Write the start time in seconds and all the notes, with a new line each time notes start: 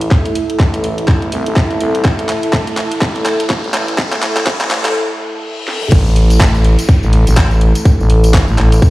Already playing: A3 E4 A4 E5, riser
0.01 closed hi-hat
0.11 kick, clap
0.26 closed hi-hat
0.35 open hi-hat
0.50 closed hi-hat
0.60 A1, kick, clap
0.74 closed hi-hat
0.84 open hi-hat
0.98 closed hi-hat
1.08 A1, kick, clap
1.22 closed hi-hat
1.32 C2, open hi-hat
1.46 A1, closed hi-hat
1.56 A1, kick, clap
1.71 closed hi-hat
1.81 C2, open hi-hat
1.95 closed hi-hat
2.05 A1, kick, clap
2.19 closed hi-hat
2.29 clap, open hi-hat
2.43 closed hi-hat
2.53 kick, clap
2.67 closed hi-hat
2.77 clap, open hi-hat
2.92 closed hi-hat
3.02 A1, kick, clap
3.16 closed hi-hat
3.26 clap, open hi-hat
3.40 closed hi-hat
3.50 A1, kick, clap
3.64 A1, closed hi-hat
3.74 clap, open hi-hat
3.88 closed hi-hat
3.98 kick, clap
4.13 clap, closed hi-hat
4.23 clap, open hi-hat
4.37 clap, closed hi-hat
4.47 A1, kick, clap
4.61 clap, closed hi-hat
4.71 clap, open hi-hat
4.85 clap, closed hi-hat
4.95 reverse cymbal
5.68 snare
5.82 mid tom
5.91 A1 A3 E4 A4, kick, closed hi-hat, crash, tambourine, downlifter
6.06 tambourine
6.16 open hi-hat
6.30 closed hi-hat, tambourine
6.40 A1, kick, clap, closed hi-hat
6.55 tambourine
6.64 open hi-hat
6.79 closed hi-hat, tambourine
6.89 kick, closed hi-hat
7.03 A1, tambourine
7.13 open hi-hat
7.27 A1, closed hi-hat, tambourine
7.37 kick, clap, closed hi-hat
7.51 tambourine
7.61 open hi-hat
7.75 closed hi-hat, tambourine
7.85 kick, closed hi-hat, tambourine
8.00 A1, tambourine
8.10 open hi-hat
8.24 closed hi-hat, tambourine
8.34 kick, clap, closed hi-hat, tambourine
8.48 A1, tambourine
8.58 A1, clap, open hi-hat
8.72 closed hi-hat, tambourine
8.82 kick, closed hi-hat, tambourine